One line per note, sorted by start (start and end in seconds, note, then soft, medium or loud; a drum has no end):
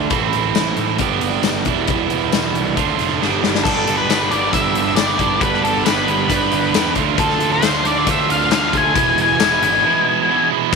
0.00 0.10 A3 medium
0.00 0.10 D4 medium
0.00 0.11 F4 medium
0.10 0.32 A1 loud
0.10 0.98 A2 medium
0.10 0.98 E3 medium
0.10 0.99 A3 loud
0.10 0.99 C4 medium
0.10 1.00 E4 medium
0.10 kick loud
0.10 closed hi-hat medium
0.33 0.55 A1 medium
0.33 closed hi-hat medium
0.55 0.76 A1 medium
0.55 snare loud
0.55 closed hi-hat medium
0.55 tambourine loud
0.77 0.98 A1 medium
0.77 closed hi-hat medium
0.98 1.21 G1 medium
0.98 1.65 G2 medium
0.98 1.65 D3 medium
0.98 1.65 G3 medium
0.98 1.66 B3 medium
0.98 1.66 D4 medium
0.98 1.66 G4 medium
0.98 kick medium
0.98 closed hi-hat medium
1.21 1.43 G1 medium
1.21 closed hi-hat medium
1.43 1.65 G1 medium
1.43 snare medium
1.43 closed hi-hat medium
1.43 tambourine loud
1.65 1.87 E1 medium
1.65 2.76 E2 medium
1.65 2.76 B2 medium
1.65 2.76 E3 medium
1.65 2.76 G3 medium
1.65 2.76 B3 medium
1.65 2.76 E4 medium
1.65 kick medium
1.65 closed hi-hat medium
1.88 2.09 E1 medium
1.88 kick loud
1.88 closed hi-hat medium
2.10 2.32 E1 medium
2.10 closed hi-hat medium
2.32 2.55 E1 medium
2.32 snare medium
2.32 closed hi-hat medium
2.32 tambourine medium
2.55 2.76 C2 medium
2.55 closed hi-hat medium
2.77 2.98 D2 medium
2.77 3.19 D3 medium
2.77 3.20 A3 medium
2.77 3.20 D4 medium
2.77 3.21 F4 medium
2.77 kick medium
2.77 closed hi-hat medium
2.99 3.20 F1 medium
2.99 snare soft
2.99 closed hi-hat medium
3.21 3.42 G1 medium
3.21 3.64 G2 medium
3.21 3.64 D3 medium
3.21 3.64 G3 loud
3.21 3.65 B3 medium
3.21 3.65 D4 medium
3.21 3.65 G4 medium
3.21 snare medium
3.44 3.65 G1 medium
3.44 snare medium
3.55 snare medium
3.64 3.87 G1 medium
3.64 4.09 G2 medium
3.64 4.09 D3 medium
3.64 4.10 G3 medium
3.64 3.97 A4 medium
3.64 kick loud
3.64 crash loud
3.68 4.11 B3 medium
3.68 4.11 D4 loud
3.68 4.11 G4 medium
3.87 4.09 G1 medium
3.87 closed hi-hat medium
3.98 4.29 B4 medium
4.09 4.30 G1 medium
4.09 4.30 G2 medium
4.09 4.31 D3 medium
4.09 4.31 G3 medium
4.09 4.31 B3 medium
4.09 4.32 D4 medium
4.09 4.32 G4 medium
4.09 snare medium
4.09 closed hi-hat medium
4.09 tambourine medium
4.31 4.53 G1 medium
4.31 4.53 G2 medium
4.31 4.53 D3 medium
4.31 4.53 G3 medium
4.31 4.54 B3 medium
4.31 4.54 D4 loud
4.31 4.54 G4 medium
4.31 4.53 D5 medium
4.31 closed hi-hat medium
4.53 4.74 G1 medium
4.53 4.95 G2 medium
4.53 4.97 D3 medium
4.53 4.96 G3 loud
4.53 4.97 B3 medium
4.53 4.97 D4 medium
4.53 4.98 G4 medium
4.53 4.96 E5 loud
4.53 kick medium
4.53 closed hi-hat loud
4.75 4.97 G1 medium
4.75 closed hi-hat medium
4.96 5.18 G1 medium
4.96 5.18 G2 medium
4.96 5.18 D3 medium
4.96 5.19 G3 medium
4.96 5.19 B3 medium
4.96 5.20 D4 medium
4.96 5.19 G4 medium
4.96 5.42 D5 medium
4.96 snare loud
4.96 closed hi-hat medium
4.96 tambourine medium
5.19 5.40 G1 medium
5.19 5.40 G2 medium
5.19 5.41 D3 medium
5.19 5.41 G3 medium
5.19 5.42 B3 medium
5.19 5.42 D4 medium
5.19 5.42 G4 medium
5.19 kick medium
5.19 closed hi-hat medium
5.41 5.63 G1 loud
5.41 5.84 G2 medium
5.41 5.84 D3 medium
5.41 5.85 G3 medium
5.41 5.85 B3 medium
5.41 5.86 D4 loud
5.41 5.86 G4 loud
5.41 5.62 B4 medium
5.41 kick loud
5.41 closed hi-hat medium
5.54 snare soft
5.63 5.85 G1 medium
5.63 5.85 A4 medium
5.63 closed hi-hat medium
5.85 6.07 G1 medium
5.85 6.06 G2 medium
5.85 6.06 D3 medium
5.85 6.06 G3 medium
5.85 6.07 B3 medium
5.85 6.08 D4 medium
5.85 6.07 G4 medium
5.85 6.92 B4 medium
5.85 snare loud
5.85 closed hi-hat medium
5.85 tambourine loud
6.07 6.29 G1 medium
6.07 6.29 G2 medium
6.07 6.29 D3 medium
6.07 6.30 G3 medium
6.07 6.30 B3 medium
6.07 6.31 D4 loud
6.07 6.30 G4 medium
6.07 closed hi-hat medium
6.29 6.51 G1 medium
6.29 6.74 G2 medium
6.29 6.74 D3 medium
6.29 6.75 G3 medium
6.29 6.75 B3 medium
6.29 6.75 D4 loud
6.29 6.75 G4 loud
6.29 kick medium
6.29 closed hi-hat loud
6.52 6.73 G1 loud
6.52 closed hi-hat medium
6.74 6.95 E2 medium
6.74 6.95 G2 medium
6.74 6.94 D3 medium
6.74 6.95 G3 medium
6.74 6.96 B3 medium
6.74 6.95 D4 medium
6.74 6.96 G4 medium
6.74 snare loud
6.74 closed hi-hat medium
6.74 tambourine loud
6.95 7.17 D2 medium
6.95 7.17 D3 medium
6.95 7.17 A3 medium
6.95 7.18 D4 medium
6.95 7.19 F4 loud
6.95 kick medium
6.95 closed hi-hat medium
7.18 7.39 D2 loud
7.18 7.63 D3 medium
7.18 7.63 A3 medium
7.18 7.63 D4 medium
7.18 7.63 F4 loud
7.18 7.52 A4 medium
7.18 kick loud
7.18 closed hi-hat medium
7.30 snare soft
7.39 7.61 D2 medium
7.39 closed hi-hat medium
7.53 7.86 C5 medium
7.61 7.83 D2 medium
7.61 7.84 D3 medium
7.61 7.84 A3 medium
7.61 7.85 D4 medium
7.61 7.85 F4 loud
7.61 snare loud
7.61 closed hi-hat medium
7.61 tambourine loud
7.84 8.06 D2 medium
7.84 8.06 D3 medium
7.84 8.06 A3 medium
7.84 8.06 D4 medium
7.84 8.07 F4 medium
7.84 8.06 D5 medium
7.84 closed hi-hat medium
8.07 8.28 D2 medium
8.07 8.50 D3 medium
8.07 8.51 A3 medium
8.07 8.51 D4 loud
8.07 8.51 F4 loud
8.07 kick medium
8.07 closed hi-hat loud
8.11 8.30 E5 loud
8.29 8.50 D2 loud
8.29 8.53 F5 medium
8.29 closed hi-hat medium
8.51 8.72 D2 medium
8.51 8.73 D3 medium
8.51 8.73 A3 medium
8.51 8.74 D4 medium
8.51 8.74 F4 loud
8.51 8.76 F5 medium
8.51 snare loud
8.51 closed hi-hat medium
8.51 tambourine loud
8.63 snare soft
8.73 8.95 D2 medium
8.73 8.94 D3 medium
8.73 8.95 A3 medium
8.73 8.95 D4 medium
8.73 8.95 F4 medium
8.73 kick medium
8.73 closed hi-hat medium
8.77 9.21 G#5 loud
8.95 9.16 E1 medium
8.95 9.39 E2 medium
8.95 9.40 B2 loud
8.95 9.39 E3 loud
8.95 9.40 G#3 loud
8.95 9.40 B3 medium
8.95 9.41 E4 loud
8.95 kick loud
8.95 closed hi-hat medium
9.17 9.38 E1 medium
9.17 closed hi-hat medium
9.22 10.48 G#5 medium
9.39 9.60 E1 medium
9.39 9.61 E2 medium
9.39 9.61 B2 medium
9.39 9.62 E3 medium
9.39 9.62 G#3 medium
9.39 9.62 B3 medium
9.39 9.63 E4 medium
9.39 snare loud
9.39 closed hi-hat medium
9.39 tambourine loud
9.60 9.82 G#1 medium
9.60 9.83 E2 medium
9.60 9.84 B2 medium
9.60 9.84 E3 medium
9.60 9.84 G#3 medium
9.60 9.85 B3 loud
9.60 9.85 E4 medium
9.60 closed hi-hat medium
9.84 10.28 E2 medium
9.84 10.28 B2 medium
9.84 10.29 E3 medium
9.84 10.29 G#3 medium
9.84 10.30 B3 loud
9.84 10.30 E4 loud
10.29 10.50 E2 medium
10.29 10.51 B2 loud
10.29 10.51 E3 medium
10.29 10.51 G#3 medium
10.29 10.51 B3 loud
10.29 10.52 E4 medium
10.52 10.71 E2 medium
10.52 10.72 B2 medium
10.52 10.72 E3 medium
10.52 10.72 G#3 loud
10.52 10.72 B3 loud
10.52 10.72 E4 loud
10.71 10.75 A3 medium
10.71 10.75 C4 medium
10.71 10.75 E4 medium
10.71 10.75 C5 medium